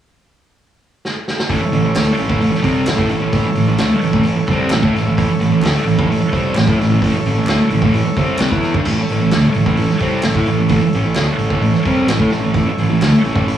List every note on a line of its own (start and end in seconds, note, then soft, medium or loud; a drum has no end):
1.05 snare medium
1.28 snare medium
1.39 snare loud
1.49 1.60 A1 medium
1.49 1.59 A2 medium
1.49 1.61 E3 loud
1.49 5.12 E4 medium
1.49 5.13 A4 medium
1.49 5.14 C#5 medium
1.49 kick loud
1.49 open hi-hat medium
1.61 muted distorted electric guitar stroke medium
1.61 muted fingered electric bass stroke soft
1.72 1.83 A1 medium
1.72 1.83 A2 medium
1.72 1.84 E3 medium
1.72 open hi-hat medium
1.84 1.95 A1 medium
1.84 1.95 A2 medium
1.84 1.96 E3 medium
1.95 2.06 D2 medium
1.95 2.06 D3 medium
1.95 2.07 A3 loud
1.95 snare loud
1.95 clap medium
1.95 open hi-hat medium
2.07 muted distorted electric guitar stroke medium
2.07 muted fingered electric bass stroke soft
2.17 2.28 A1 medium
2.17 2.28 A2 medium
2.17 2.29 E3 medium
2.17 open hi-hat medium
2.29 2.40 A1 medium
2.29 2.39 A2 medium
2.29 2.39 E3 medium
2.29 kick loud
2.40 2.53 A1 medium
2.40 2.50 A2 medium
2.40 2.52 E3 medium
2.40 open hi-hat medium
2.51 muted distorted electric guitar stroke medium
2.51 muted fingered electric bass stroke soft
2.51 snare soft
2.62 2.85 C2 loud
2.62 2.85 C3 medium
2.62 2.86 G3 medium
2.62 2.86 C4 loud
2.62 kick medium
2.62 open hi-hat medium
2.87 2.98 A1 medium
2.87 2.98 A2 medium
2.87 2.96 E3 medium
2.87 snare loud
2.87 clap loud
2.87 open hi-hat medium
2.96 3.09 A2 medium
2.96 3.08 A3 medium
2.96 3.09 E4 loud
2.96 kick loud
3.09 3.21 A1 medium
3.09 3.20 A2 medium
3.09 3.20 E3 medium
3.09 open hi-hat medium
3.21 3.32 A1 medium
3.21 3.32 A2 medium
3.21 3.33 E3 medium
3.32 3.44 A1 medium
3.32 3.44 A2 loud
3.32 3.45 E3 loud
3.32 kick loud
3.32 open hi-hat medium
3.45 muted distorted electric guitar stroke medium
3.45 muted fingered electric bass stroke soft
3.55 3.67 A1 medium
3.55 3.66 A2 medium
3.55 3.67 E3 medium
3.55 open hi-hat medium
3.68 3.79 A1 medium
3.68 3.78 A2 medium
3.68 3.79 E3 medium
3.78 3.90 D2 medium
3.78 3.90 D3 medium
3.78 3.90 A3 medium
3.78 snare loud
3.78 clap medium
3.78 open hi-hat medium
3.91 muted distorted electric guitar stroke medium
3.91 muted fingered electric bass stroke soft
4.01 4.12 A1 medium
4.01 4.13 A2 medium
4.01 4.14 E3 medium
4.01 open hi-hat medium
4.13 4.24 A1 medium
4.13 4.25 A2 medium
4.13 4.25 E3 loud
4.13 kick loud
4.24 4.36 A1 medium
4.24 4.36 A2 medium
4.24 4.37 E3 medium
4.24 open hi-hat medium
4.37 muted fingered electric bass stroke soft
4.37 muted distorted electric guitar stroke medium
4.47 4.69 C2 medium
4.47 4.71 C3 medium
4.47 4.71 G3 medium
4.47 4.60 A5 medium
4.47 kick medium
4.47 open hi-hat medium
4.51 4.72 C4 medium
4.61 4.71 F#5 medium
4.70 4.81 A1 medium
4.70 4.83 A2 medium
4.70 4.82 E3 medium
4.70 5.14 E5 medium
4.70 snare loud
4.70 clap loud
4.70 open hi-hat medium
4.82 4.92 A2 medium
4.82 4.93 A3 medium
4.82 4.94 E4 loud
4.82 kick loud
4.93 5.04 A1 medium
4.93 5.05 A2 medium
4.93 5.06 E3 medium
4.93 snare soft
4.93 open hi-hat medium
5.05 5.16 A1 medium
5.05 5.16 A2 medium
5.05 5.18 E3 medium
5.13 5.26 A1 medium
5.13 5.28 A2 loud
5.13 8.79 E4 medium
5.13 8.80 A4 medium
5.18 5.29 E3 loud
5.18 8.82 C#5 medium
5.18 kick loud
5.18 open hi-hat medium
5.27 muted fingered electric bass stroke soft
5.27 muted distorted electric guitar stroke medium
5.38 5.49 A1 medium
5.38 5.50 A2 medium
5.38 5.51 E3 medium
5.38 open hi-hat medium
5.49 5.60 A1 medium
5.49 5.63 A2 medium
5.49 5.63 E3 medium
5.60 5.72 D2 loud
5.60 5.74 D3 medium
5.60 5.74 A3 loud
5.60 clap medium
5.65 snare loud
5.65 open hi-hat medium
5.73 muted fingered electric bass stroke soft
5.73 muted distorted electric guitar stroke medium
5.84 5.96 A1 medium
5.84 5.96 A2 medium
5.84 5.97 E3 medium
5.88 open hi-hat medium
5.98 6.08 A1 medium
5.98 6.08 A2 medium
5.98 6.09 E3 loud
5.98 kick loud
6.08 6.18 A1 medium
6.08 6.20 A2 medium
6.08 6.21 E3 medium
6.08 open hi-hat medium
6.19 muted fingered electric bass stroke soft
6.19 muted distorted electric guitar stroke medium
6.32 6.52 C2 loud
6.32 6.54 C3 medium
6.32 6.54 G3 medium
6.32 6.55 C4 loud
6.32 kick medium
6.32 open hi-hat medium
6.53 6.64 A1 medium
6.53 6.67 A2 medium
6.53 clap medium
6.57 6.67 E3 medium
6.57 snare loud
6.57 open hi-hat medium
6.67 6.76 A2 medium
6.67 6.78 A3 medium
6.67 6.79 E4 loud
6.67 kick loud
6.76 6.88 A1 medium
6.76 6.90 A2 medium
6.80 6.90 E3 medium
6.80 snare soft
6.80 open hi-hat medium
6.89 7.00 A1 medium
6.89 7.01 A2 medium
6.89 7.02 E3 medium
7.02 7.11 A1 medium
7.02 7.12 A2 medium
7.02 7.13 E3 loud
7.02 kick loud
7.02 open hi-hat medium
7.12 muted fingered electric bass stroke soft
7.12 muted distorted electric guitar stroke medium
7.22 7.33 A1 medium
7.22 7.36 A2 medium
7.22 open hi-hat medium
7.27 7.37 E3 medium
7.34 7.44 A1 medium
7.34 7.48 A2 medium
7.38 7.48 E3 medium
7.45 7.56 D2 medium
7.45 7.58 D3 medium
7.45 snare loud
7.45 clap loud
7.45 open hi-hat medium
7.50 7.59 A3 loud
7.58 muted fingered electric bass stroke soft
7.58 muted distorted electric guitar stroke medium
7.69 7.80 A1 medium
7.69 7.81 A2 medium
7.69 7.83 E3 medium
7.69 open hi-hat medium
7.81 7.92 A1 loud
7.81 7.93 A2 medium
7.81 7.94 E3 medium
7.81 kick loud
7.93 8.04 A1 medium
7.93 8.04 A2 medium
7.93 8.06 E3 medium
7.93 open hi-hat medium
8.05 muted fingered electric bass stroke soft
8.05 muted distorted electric guitar stroke medium
8.16 8.38 C2 medium
8.16 8.38 C3 medium
8.16 8.40 G3 medium
8.16 8.40 C4 loud
8.16 8.39 E5 medium
8.16 kick loud
8.16 open hi-hat medium
8.38 8.50 C2 medium
8.38 8.50 C3 medium
8.38 8.51 G3 loud
8.38 8.61 F#5 medium
8.38 snare loud
8.38 clap loud
8.38 open hi-hat medium
8.51 8.72 E2 medium
8.51 8.73 E3 medium
8.51 8.74 B3 medium
8.51 8.74 E4 loud
8.51 kick loud
8.63 8.84 G5 medium
8.63 snare soft
8.63 open hi-hat soft
8.74 8.85 G2 loud
8.74 8.85 G3 medium
8.74 8.86 D4 loud
8.74 kick loud
8.84 8.96 A1 medium
8.84 8.97 A2 loud
8.84 8.97 E3 loud
8.84 12.50 E4 medium
8.84 12.51 A4 medium
8.84 kick medium
8.84 crash loud
8.88 12.52 C#5 medium
9.00 muted distorted electric guitar stroke medium
9.09 9.21 A1 medium
9.09 9.20 A2 medium
9.09 9.21 E3 medium
9.09 open hi-hat medium
9.21 9.31 A1 medium
9.21 9.32 A2 medium
9.21 9.33 E3 medium
9.31 9.43 D2 medium
9.31 9.43 D3 loud
9.31 9.43 A3 loud
9.31 snare loud
9.31 clap medium
9.31 open hi-hat medium
9.43 muted fingered electric bass stroke soft
9.43 muted distorted electric guitar stroke medium
9.54 9.65 A1 medium
9.54 9.65 A2 medium
9.54 9.66 E3 medium
9.54 open hi-hat medium
9.66 9.76 A1 medium
9.66 9.77 A2 loud
9.66 9.78 E3 medium
9.66 kick loud
9.77 9.88 A1 medium
9.77 9.89 A2 medium
9.77 9.90 E3 medium
9.77 open hi-hat medium
9.90 muted fingered electric bass stroke soft
9.90 muted distorted electric guitar stroke medium
9.90 snare soft
9.99 10.22 C2 loud
9.99 10.23 C3 medium
9.99 10.24 G3 medium
9.99 10.24 C4 loud
9.99 kick loud
9.99 open hi-hat medium
10.22 10.34 A1 medium
10.22 10.36 A2 medium
10.22 10.36 E3 medium
10.22 snare loud
10.22 clap medium
10.22 open hi-hat medium
10.35 10.45 A2 loud
10.35 10.47 A3 medium
10.35 10.47 E4 medium
10.35 kick loud
10.46 10.57 A1 medium
10.46 10.57 A2 medium
10.46 10.58 E3 medium
10.46 open hi-hat medium
10.59 10.69 A1 medium
10.59 10.69 A2 medium
10.59 10.70 E3 medium
10.69 10.81 A1 medium
10.69 10.81 A2 medium
10.69 10.82 E3 loud
10.69 kick loud
10.69 open hi-hat medium
10.82 muted distorted electric guitar stroke medium
10.82 muted fingered electric bass stroke soft
10.93 11.04 A1 medium
10.93 11.04 A2 medium
10.93 11.04 E3 medium
10.93 open hi-hat medium
11.05 11.16 A1 medium
11.05 11.15 A2 medium
11.05 11.16 E3 medium
11.15 11.27 D2 loud
11.15 11.27 D3 medium
11.15 11.27 A3 loud
11.15 snare loud
11.15 clap medium
11.15 open hi-hat medium
11.28 muted distorted electric guitar stroke medium
11.28 muted fingered electric bass stroke soft
11.38 11.49 A1 medium
11.38 11.50 A2 medium
11.38 11.51 E3 medium
11.38 open hi-hat medium
11.50 11.60 A1 medium
11.50 11.62 A2 medium
11.50 11.62 E3 loud
11.50 kick loud
11.60 11.72 A1 medium
11.60 11.73 A2 medium
11.60 11.74 E3 medium
11.60 open hi-hat medium
11.73 muted fingered electric bass stroke soft
11.73 muted distorted electric guitar stroke medium
11.73 snare soft
11.85 12.05 C2 loud
11.85 12.08 C3 medium
11.85 12.08 G3 medium
11.85 12.09 C4 medium
11.85 kick loud
11.85 open hi-hat medium
12.05 12.18 A1 medium
12.05 12.20 A2 medium
12.05 snare loud
12.05 clap loud
12.05 open hi-hat medium
12.09 12.19 E3 medium
12.20 12.31 A2 medium
12.20 12.31 A3 medium
12.20 12.31 E4 medium
12.20 kick loud
12.31 12.42 A1 medium
12.31 12.43 A2 medium
12.31 12.43 E3 medium
12.31 snare soft
12.31 open hi-hat medium
12.42 12.54 A1 medium
12.42 12.54 A2 medium
12.42 12.55 E3 medium
12.53 12.66 A1 medium
12.53 12.66 A2 medium
12.53 12.67 E3 loud
12.53 13.58 E4 medium
12.53 13.58 A4 medium
12.53 13.58 C#5 medium
12.53 kick loud
12.53 open hi-hat medium
12.66 muted fingered electric bass stroke soft
12.66 muted distorted electric guitar stroke medium
12.78 12.88 A1 medium
12.78 12.89 A2 medium
12.78 12.89 E3 medium
12.78 open hi-hat medium
12.88 13.00 A1 medium
12.88 13.01 A2 medium
12.88 13.02 E3 medium
13.02 13.12 D2 medium
13.02 13.12 D3 medium
13.02 13.13 A3 medium
13.02 snare loud
13.02 clap medium
13.02 open hi-hat medium
13.12 muted fingered electric bass stroke soft
13.12 muted distorted electric guitar stroke medium
13.24 13.35 A1 medium
13.24 13.33 A2 medium
13.24 13.35 E3 medium
13.24 open hi-hat soft
13.34 13.46 A1 medium
13.34 13.46 A2 medium
13.34 13.47 E3 medium
13.34 kick loud
13.46 13.58 A1 medium
13.46 13.57 A2 medium
13.46 13.58 E3 medium
13.46 open hi-hat medium